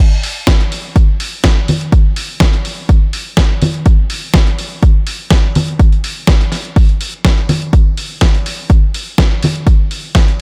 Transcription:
0.23 open hi-hat loud
0.47 kick loud
0.47 snare loud
0.47 closed hi-hat medium
0.60 closed hi-hat medium
0.72 open hi-hat loud
0.96 kick loud
0.96 closed hi-hat medium
1.20 open hi-hat loud
1.44 kick loud
1.44 snare loud
1.44 closed hi-hat medium
1.68 open hi-hat loud
1.68 tambourine loud
1.68 high conga medium
1.81 closed hi-hat medium
1.81 tambourine medium
1.92 kick loud
1.92 closed hi-hat medium
2.16 open hi-hat loud
2.16 tambourine loud
2.30 tambourine soft
2.40 kick loud
2.40 snare loud
2.40 closed hi-hat medium
2.53 closed hi-hat medium
2.65 open hi-hat loud
2.65 tambourine medium
2.78 tambourine medium
2.89 kick loud
2.89 closed hi-hat medium
3.13 open hi-hat loud
3.26 tambourine soft
3.37 kick loud
3.37 snare loud
3.37 closed hi-hat medium
3.62 open hi-hat loud
3.62 tambourine medium
3.62 high conga medium
3.74 closed hi-hat medium
3.74 tambourine medium
3.86 kick loud
3.86 closed hi-hat medium
4.10 open hi-hat loud
4.10 tambourine medium
4.23 tambourine medium
4.34 kick loud
4.34 snare loud
4.47 closed hi-hat medium
4.58 open hi-hat loud
4.58 tambourine medium
4.71 tambourine medium
4.82 kick loud
4.82 closed hi-hat medium
5.07 open hi-hat loud
5.07 tambourine medium
5.20 tambourine soft
5.30 kick loud
5.30 snare loud
5.30 closed hi-hat medium
5.55 open hi-hat loud
5.55 tambourine medium
5.55 high conga medium
5.68 closed hi-hat medium
5.68 tambourine medium
5.79 kick loud
5.79 closed hi-hat medium
5.92 closed hi-hat soft
6.04 open hi-hat loud
6.04 tambourine medium
6.17 tambourine soft
6.27 kick loud
6.27 snare loud
6.27 closed hi-hat medium
6.41 closed hi-hat medium
6.52 snare soft
6.52 open hi-hat loud
6.52 tambourine medium
6.65 closed hi-hat soft
6.65 tambourine soft
6.76 kick loud
6.76 open hi-hat medium
6.89 closed hi-hat soft
7.01 open hi-hat loud
7.01 tambourine medium
7.14 closed hi-hat soft
7.14 tambourine medium
7.25 kick loud
7.25 snare loud
7.25 closed hi-hat medium
7.38 closed hi-hat soft
7.49 open hi-hat loud
7.49 tambourine medium
7.49 high conga medium
7.62 closed hi-hat soft
7.62 tambourine medium
7.73 kick loud
7.73 closed hi-hat medium
7.73 tambourine soft
7.97 open hi-hat loud
7.97 tambourine medium
8.11 tambourine soft
8.21 kick loud
8.21 snare loud
8.21 closed hi-hat medium
8.35 closed hi-hat soft
8.45 open hi-hat loud
8.45 tambourine medium
8.58 tambourine soft
8.70 kick loud
8.70 closed hi-hat medium
8.70 tambourine soft
8.94 open hi-hat loud
8.94 tambourine medium
9.07 tambourine soft
9.18 kick loud
9.18 snare loud
9.18 closed hi-hat medium
9.43 open hi-hat loud
9.43 tambourine loud
9.43 high conga medium
9.55 closed hi-hat soft
9.55 tambourine medium
9.67 kick loud
9.67 closed hi-hat medium
9.91 open hi-hat loud
9.91 tambourine loud
10.04 tambourine medium
10.15 kick loud
10.15 snare loud
10.15 closed hi-hat medium
10.28 closed hi-hat medium

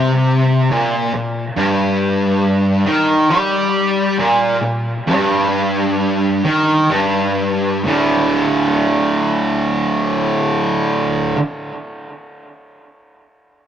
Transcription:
0.00 0.69 C3 medium
0.71 1.12 A#2 loud
1.14 1.48 A#2 medium
1.57 2.85 G2 loud
2.86 3.28 D#3 medium
3.30 4.17 G3 loud
4.19 4.61 A#2 loud
4.63 4.98 A#2 medium
5.07 6.43 G2 loud
6.45 6.89 D#3 medium
6.90 7.83 G2 medium
7.84 11.34 D2 medium
7.84 11.36 A2 loud
7.84 11.38 D3 medium

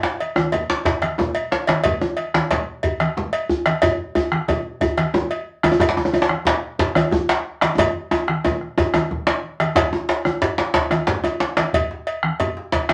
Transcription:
0.03 bombo rim soft
0.03 djembe slap medium
0.19 cowbell soft
0.19 djembe slap soft
0.19 high conga soft
0.36 bombo rim medium
0.36 djembe slap medium
0.36 djembe tone medium
0.36 high conga medium
0.52 cowbell medium
0.52 djembe slap soft
0.52 djembe tone medium
0.52 high conga soft
0.52 low conga medium
0.70 djembe slap medium
0.85 bombo rim soft
0.85 bombo low loud
0.85 cowbell soft
0.85 djembe slap soft
0.85 djembe slap medium
0.85 djembe bass medium
1.02 bombo rim medium
1.02 cowbell soft
1.02 djembe slap medium
1.02 high conga medium
1.18 bombo rim soft
1.18 djembe tone medium
1.18 high conga soft
1.18 low conga medium
1.35 cowbell medium
1.52 bombo rim soft
1.52 djembe slap medium
1.67 bombo rim medium
1.67 cowbell medium
1.67 djembe slap medium
1.67 high conga medium
1.84 bombo rim soft
1.84 bombo low loud
1.84 cowbell medium
1.84 djembe tone medium
1.84 djembe bass medium
1.84 low conga medium
2.01 djembe slap soft
2.01 djembe tone medium
2.01 high conga soft
2.17 bombo rim soft
2.17 cowbell soft
2.17 high conga soft
2.34 bombo rim medium
2.34 djembe slap medium
2.34 high conga medium
2.51 cowbell medium
2.51 djembe slap medium
2.51 high conga soft
2.51 djembe tone medium
2.51 low conga medium
2.83 bombo low loud
2.83 cowbell medium
2.83 djembe bass medium
3.00 bombo rim medium
3.00 cowbell medium
3.00 djembe slap medium
3.00 high conga medium
3.17 djembe tone medium
3.17 low conga medium
3.33 cowbell medium
3.50 djembe bass medium
3.66 bombo rim medium
3.66 cowbell medium
3.66 djembe slap medium
3.66 high conga medium
3.82 bombo rim soft
3.82 bombo low loud
3.82 cowbell medium
3.82 djembe tone medium
3.82 djembe bass medium
3.82 low conga medium
4.00 djembe slap soft
4.15 bombo rim soft
4.15 cowbell soft
4.15 high conga soft
4.15 djembe bass medium
4.32 bombo rim medium
4.32 djembe slap medium
4.32 high conga medium
4.48 cowbell medium
4.48 high conga soft
4.48 djembe tone medium
4.48 low conga medium
4.81 bombo low medium
4.81 cowbell medium
4.81 djembe bass medium
4.98 bombo rim medium
4.98 cowbell medium
4.98 djembe slap medium
4.98 high conga medium
5.14 djembe tone medium
5.14 djembe tone loud
5.14 low conga medium
5.31 cowbell soft
5.63 bombo rim medium
5.63 cowbell medium
5.63 djembe slap medium
5.63 high conga medium
5.63 djembe tone loud
5.72 djembe tone medium
5.80 bombo rim soft
5.80 bombo low loud
5.80 cowbell medium
5.80 djembe tone medium
5.80 djembe bass medium
5.80 low conga medium
5.89 djembe slap medium
5.96 djembe slap soft
5.96 high conga soft
5.96 djembe tone loud
6.05 djembe tone medium
6.13 bombo rim soft
6.13 cowbell soft
6.13 high conga soft
6.13 djembe tone medium
6.22 djembe slap medium
6.29 bombo rim medium
6.29 djembe slap medium
6.29 high conga medium
6.45 cowbell medium
6.45 djembe slap loud
6.45 high conga soft
6.45 djembe tone medium
6.45 low conga medium
6.79 bombo low medium
6.79 cowbell soft
6.79 djembe slap medium
6.79 djembe bass medium
6.95 bombo rim medium
6.95 cowbell medium
6.95 djembe slap medium
6.95 high conga medium
6.95 djembe tone medium
7.11 djembe tone medium
7.11 low conga medium
7.11 djembe bass medium
7.29 cowbell medium
7.29 djembe slap loud
7.61 bombo rim medium
7.61 cowbell medium
7.61 djembe slap medium
7.61 high conga medium
7.78 bombo low loud
7.78 cowbell medium
7.78 high conga soft
7.78 djembe tone medium
7.78 djembe tone loud
7.78 low conga medium
7.78 djembe bass medium
7.95 high conga soft
8.11 cowbell soft
8.11 djembe tone loud
8.11 high conga soft
8.28 bombo rim medium
8.28 djembe slap medium
8.28 high conga medium
8.45 bombo rim soft
8.45 cowbell soft
8.45 djembe tone loud
8.45 low conga medium
8.61 bombo rim soft
8.61 high conga soft
8.78 bombo low loud
8.78 cowbell medium
8.78 djembe tone loud
8.78 djembe bass medium
8.94 bombo rim medium
8.94 cowbell soft
8.94 djembe slap medium
8.94 djembe tone loud
8.94 high conga medium
9.11 bombo rim soft
9.11 low conga medium
9.27 cowbell soft
9.27 djembe slap loud
9.27 djembe slap soft
9.43 high conga soft
9.60 bombo rim medium
9.60 cowbell medium
9.60 djembe slap medium
9.60 high conga medium
9.75 bombo low medium
9.75 cowbell medium
9.75 djembe slap loud
9.75 djembe tone medium
9.75 djembe bass medium
9.75 low conga medium
9.93 djembe slap medium
9.93 djembe tone medium
10.09 cowbell soft
10.09 djembe slap medium
10.25 bombo rim medium
10.25 djembe tone medium
10.25 high conga medium
10.42 cowbell medium
10.42 djembe slap medium
10.42 djembe bass medium
10.58 djembe slap medium
10.74 bombo low medium
10.74 cowbell medium
10.74 djembe slap loud
10.91 bombo rim medium
10.91 cowbell soft
10.91 djembe tone medium
10.91 high conga medium
11.07 bombo rim soft
11.07 djembe slap medium
11.07 high conga soft
11.07 djembe tone medium
11.07 low conga medium
11.07 djembe bass medium
11.24 cowbell soft
11.24 djembe slap soft
11.24 djembe tone medium
11.40 djembe slap medium
11.57 bombo rim medium
11.57 cowbell soft
11.57 djembe slap medium
11.57 high conga medium
11.73 bombo low loud
11.73 cowbell medium
11.73 djembe tone medium
11.73 low conga medium
11.73 djembe bass medium
11.91 djembe slap soft
12.07 cowbell soft
12.23 bombo rim medium
12.23 high conga medium
12.40 cowbell medium
12.40 djembe tone medium
12.40 djembe bass medium
12.40 low conga medium
12.57 djembe slap medium
12.72 bombo low medium
12.72 cowbell medium
12.72 djembe slap medium
12.89 bombo rim medium
12.89 cowbell medium
12.89 djembe slap medium
12.89 high conga medium

